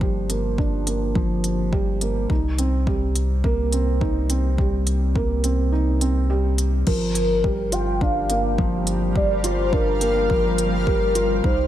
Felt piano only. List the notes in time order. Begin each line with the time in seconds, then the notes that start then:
Already playing: F3 A#3 D4
0.00 G3
0.29 A#3
0.58 D4
0.87 A#3
1.15 F3
1.72 G3
2.02 A#3
2.30 D#4
2.59 C4
2.87 G3
3.44 A#3
3.73 C4
4.01 D#4
4.30 C4
4.58 G3
5.16 A#3
5.44 C4
5.72 D#4
6.01 C4
6.30 G3
6.87 F3
7.44 G3
7.72 F4
8.01 D4
8.30 A#3
8.58 F3
9.15 G3
9.44 F4
9.72 D4
10.01 A#3
10.29 F3
10.86 G3
11.15 F4
11.44 D#4